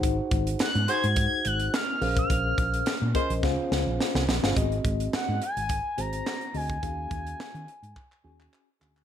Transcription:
<<
  \new Staff \with { instrumentName = "Analog synth lead" } { \time 4/4 \key aes \mixolydian \tempo 4 = 106 r4 ges'''8 aes'''8 aes'''8 ges'''8 f'''8. f'''16~ | f'''4.~ f'''16 r2 r16 | r4 ges''8 aes''4 bes''4 aes''8~ | aes''2. r4 | }
  \new Staff \with { instrumentName = "Horn section" } { \time 4/4 \key aes \mixolydian r4. <ges' aes' c''>8 r2 | r4. <f' aes' c''>8 r2 | r1 | r1 | }
  \new Staff \with { instrumentName = "Tine electric piano" } { \time 4/4 \key aes \mixolydian <ees' ges' aes' c'' ges''>4 r8 <ees' ges' aes' c'' ges''>4. r8 <des' aes' bes' c'' f''>8~ | <des' aes' bes' c'' f''>4 r8 <des' aes' bes' c'' ees''>8 <des' f' aes' c'' f''>4. r16 <des' f' aes' c'' f''>16 | <c' ges' aes' ees''>4. r4 <c' ges' aes' c''>8. r16 <c' ges' aes' ees''>8 | <des' ges' aes' f''>4. r4 <des' ges' aes' aes''>8. r16 <des' ges' aes' aes''>8 | }
  \new Staff \with { instrumentName = "Fingered electric bass" } { \clef bass \time 4/4 \key aes \mixolydian aes,,8 aes,,8 r16 aes,16 r16 aes,8 r16 aes,,8 r8 bes,,8 | bes,,8 bes,,8 r16 bes,16 r16 bes,,16 des,16 r16 des,16 bes,,16 r16 c,16 bes,,16 g,,16 | aes,,8 aes,,8 r16 aes,16 r16 aes,,8 r16 aes,,8 r8 d,8 | ees,8 ees,8 r16 ees16 r16 aes,16 r8 ees,8 r8 d,8 | }
  \new DrumStaff \with { instrumentName = "Drums" } \drummode { \time 4/4 <hh bd>8 <hh bd>16 hh16 <hc hh sn>16 hh16 hh16 hh16 <hh bd>8 hh16 hh16 <hc hh sn>8 hho16 <hh bd>16 | <hh bd>8 <hh bd>16 hh16 <hc hh sn>8 <hh bd>16 hh16 <bd sn>8 sn8 sn16 sn16 sn16 sn16 | <hh bd>16 hh16 <hh bd>16 hh16 <hc sn>8 hh16 hh16 <hh bd>8 hh16 hh16 <hc sn>16 hh16 hho16 <hh bd>16 | <hh bd>8 <hh bd>16 hh16 <hc sn>16 hh16 hh16 hh16 <hc bd>16 hc8 hc16 hc8 hc16 hc16 | }
>>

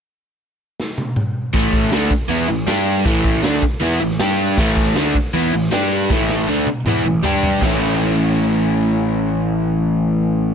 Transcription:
<<
  \new Staff \with { instrumentName = "Overdriven electric guitar" } { \time 4/4 \key a \major \tempo 4 = 159 r1 | <a, e a>4 <d a d'>8 r8 <e b e'>8 <a, e>8 <g d' g'>4 | <a, e a>4 <d a d'>8 r8 <e b e'>8 <a, e>8 <g d' g'>4 | <a, e a>4 <d a d'>8 r8 <e b e'>8 <a, e>8 <g d' g'>4 |
<a, e a>4 <d a d'>8 r8 <e b e'>8 <a, e>8 <g d' g'>4 | <a, e a cis' e'>1~ | <a, e a cis' e'>1 | }
  \new Staff \with { instrumentName = "Picked electric bass" } { \clef bass \time 4/4 \key a \major r1 | a,,4 d,8 r8 e,8 a,,8 g,4 | a,,4 d,8 r8 e,8 a,,8 g,4 | a,,4 d,8 r8 e,8 a,,8 g,4 |
a,,4 d,8 r8 e,8 a,,8 g,4 | a,,1~ | a,,1 | }
  \new DrumStaff \with { instrumentName = "Drums" } \drummode { \time 4/4 r4 r4 sn8 tommh8 toml4 | <hho bd>8 <hho bd>8 <hho sn>8 <hho bd>8 hho8 hho8 <hho sn>8 hho8 | <hho bd>8 <hho bd>16 sn16 <hho sn>8 <hho bd>8 hho8 hho16 sn16 <hho sn>8 hho8 | <cymc bd>8 <hho bd>16 sn16 <hho sn>8 <hho bd>8 hho8 hho16 sn16 <hho sn>8 hho8 |
<bd sn>8 sn8 r8 tommh8 toml4 tomfh8 tomfh8 | <cymc bd sn>4 r4 r4 r4 | r4 r4 r4 r4 | }
>>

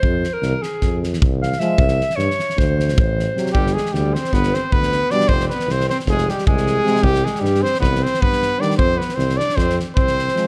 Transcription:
<<
  \new Staff \with { instrumentName = "Trumpet" } { \time 9/8 \tempo 4. = 103 r1 r8 | r1 r8 | g'8 aes'8 g'8 c''8 b'8 c''8 b'4 d''8 | c''8 b'8 c''8 c''8 aes'8 g'8 aes'4. |
g'8 aes'8 g'8 c''8 b'8 c''8 b'4 d''8 | c''8 b'8 c''8 d''8 c''8 r8 c''4. | }
  \new Staff \with { instrumentName = "Alto saxophone" } { \time 9/8 c''8. bes'8. aes'4 r4 f''8 e''8~ | e''4 des''4 c''4 c''4. | g8 aes8 g8 c'8 b8 c'8 b4 d'8 | c'8 b8 c'8 c'8 aes8 g8 aes4. |
g8 aes8 g8 c'8 b8 c'8 b4 d'8 | c'8 b8 c'8 d'8 c'8 r8 c'4. | }
  \new Staff \with { instrumentName = "Trombone" } { \clef bass \time 9/8 r1 aes8~ | aes8 r2. r8 fis8~ | fis8 r2. r8 g8~ | g8 r2. r8 aes8~ |
aes8 r2. r8 g8~ | g8 r2. r8 aes8 | }
  \new Staff \with { instrumentName = "Euphonium" } { \clef bass \time 9/8 r1 f8~ | f8 r2. r8 c8~ | c8 r2. r8 b,8~ | b,8 r2. r8 c8~ |
c8 r2. r8 ees8~ | ees8 r2. r8 f8 | }
  \new Staff \with { instrumentName = "Tuba" } { \clef bass \time 9/8 f,4 c,8 r8 f,4 c,4. | c,4 g,8 r8 d,4 a,,4. | g,,4 d,4 g,,4 d,4. | f,,4 c,4 f,,4 c,4. |
c,4 g,4 c,4 g,4. | f,4 c,4 f,4 c,4. | }
  \new DrumStaff \with { instrumentName = "Drums" } \drummode { \time 9/8 bd8 sn8 sn8 sn8 <bd sn>8 sn16 sn16 bd8 sn16 sn16 sn8 | bd16 sn16 sn16 sn16 sn16 sn16 sn16 sn16 <bd sn>8 sn16 sn16 bd8 sn8 sn16 sn16 | bd16 sn16 sn16 sn16 sn8 sn16 sn16 <bd sn>16 sn16 sn8 bd16 sn16 sn8 sn16 sn16 | bd16 sn16 sn16 sn16 sn16 sn16 sn16 sn16 <bd sn>16 sn16 sn16 sn16 bd16 sn16 sn8 sn16 sn16 |
bd16 sn16 sn16 sn16 sn16 sn16 sn16 sn16 <bd sn>16 sn16 sn16 sn16 bd16 sn16 sn8 sn16 sn16 | bd8 sn16 sn16 sn16 sn16 sn16 sn16 <bd sn>16 sn16 sn8 bd16 sn16 sn16 sn16 sn8 | }
>>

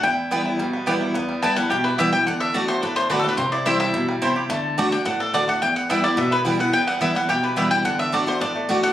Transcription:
<<
  \new Staff \with { instrumentName = "Mandolin" } { \time 4/4 \key e \minor \tempo 4 = 215 g''2. r4 | r4 a''8 fis''8 g''8 b'8 e''8 g''8 | fis''8 e''8 d''8 c''8 b'8 c''8 \tuplet 3/2 { b'8 a'8 b'8 } | c''8 d''8 e''8 e''4 r4. |
a''4. g''8 fis''8 a'8 d''8 fis''8 | g''8 fis''8 e''8 d''8 e''8 b'8 r8 fis''8 | g''8 fis''8 e''8 fis''8 g''8 b'8 e''8 g''8 | fis''8 e''8 d''8 c''8 d''4. fis''8 | }
  \new Staff \with { instrumentName = "Mandolin" } { \time 4/4 \key e \minor r4 <b e' b' g''>8 r4. <b e' b' g''>8 r8 | r4 <b e' b' g''>8 r4. <b e' b' g''>8 r8 | r4 <a fis' d'' a''>8 r4. <a fis' d'' a''>8 r8 | r4 <c' e' c'' g''>8 r4. <c' e' c'' g''>8 r8 |
r4 <a fis' d'' a''>8 r4. <a fis' d'' a''>8 r8 | r4 <b e' b' g''>8 r4. <b e' b' g''>8 r8 | r4 <b e' b' g''>8 r4. <b e' b' g''>8 r8 | r4 <a fis' d'' a''>8 r4. <a fis' d'' a''>8 r8 | }
  \new Staff \with { instrumentName = "Five-string banjo" } { \time 4/4 \key e \minor e'4 b8 e'8 g8 b8 g'8 e'8 | b8 g8 e'8 g8 g'8 e'8 g'8 e'8 | d'8 d'4 a8 d'8 a8 d'8 d'8 | c'8 e'8 g'8 g8 e'8 g8 e'8 g'8 |
a4 d'8 d'8 d'8 d'8 d'8 a8 | e4 e'8 g8 b8 e'8 g8 b8 | b8 g8 e'8 g8 g'8 e'8 g'8 e'8 | d'8 d'8 d'8 a8 d'8 a8 d'8 d'8 | }
  \new Staff \with { instrumentName = "Steel-string acoustic guitar" } { \time 4/4 \key e \minor << { r4 <e g b e'>4 r4 <e g b e'>4 | r4 <e g b e'>8 <b e'>8 r4 <e g b e'>8 <b e'>8 | r4 <d a d' fis'>8 <d' fis'>8 r4 <d a d' fis'>8 <d' fis'>8 | r4 <e g c' e'>4 r2 |
r4 <d a d' fis'>8 <d' fis'>8 r4 <d a d' fis'>8 <d' fis'>8 | r4 <e g b e'>8 <b e'>8 r4 <e g b e'>8 <b e'>8 | r4 <e g b e'>8 <b e'>8 r4 <e g b e'>4 | r4 <d a d' fis'>8 <d' fis'>8 r4 <d a d' fis'>4 | } \\ { e,2 b,2 | e,2 b,2 | d2 a,2 | c2 b,4 c4 |
d2 a,2 | e,2 b,2 | e,2 b,2 | d2 a,2 | } >> }
>>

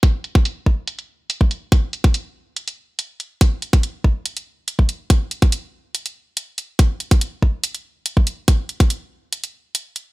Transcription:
\new DrumStaff \with { instrumentName = "Drums" } \drummode { \time 4/4 \tempo 4 = 142 <hh bd>8 hh16 <hh bd>16 hh8 bd8 hh16 hh8. hh16 bd16 hh8 | <hh bd>8 hh16 <hh bd>16 hh4 hh16 hh8. hh8 hh8 | <hh bd>8 hh16 <hh bd>16 hh8 bd8 hh16 hh8. hh16 bd16 hh8 | <hh bd>8 hh16 <hh bd>16 hh4 hh16 hh8. hh8 hh8 |
<hh bd>8 hh16 <hh bd>16 hh8 bd8 hh16 hh8. hh16 bd16 hh8 | <hh bd>8 hh16 <hh bd>16 hh4 hh16 hh8. hh8 hh8 | }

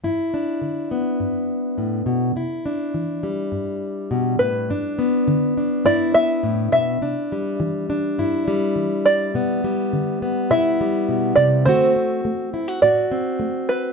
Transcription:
<<
  \new Staff \with { instrumentName = "Five-string banjo" } { \time 4/4 \key g \major \tempo 4 = 103 r1 | r2. r8 b'8~ | b'2 d''8 e''4 e''8~ | e''4. r2 d''8~ |
d''2 e''4. d''8 | c''2 d''4. b'8 | }
  \new Staff \with { instrumentName = "Steel-string acoustic guitar" } { \clef bass \time 4/4 \key g \major << { e'8 d'4 b2~ b8 | e'8 d'4 g2~ g8 | d'8 b4 d'8 e'8 b4. | d'8 g4 d'8 e'8 g4. |
b8 g4 b8 e'8 g4. | <a c' fis'>8 c'4 e'16 fis'16 fis'8 c'4. | } \\ { g,4 d4 g,4 a,8 b,8 | c4 e4 g,4 b,8 a,8 | g,4 d4 g,4 a,8 b,8 | c4 e4 g,4 e4 |
b,4 d4 b,4 b,8 c8 | d4 a4 a,4 a4 | } >> }
>>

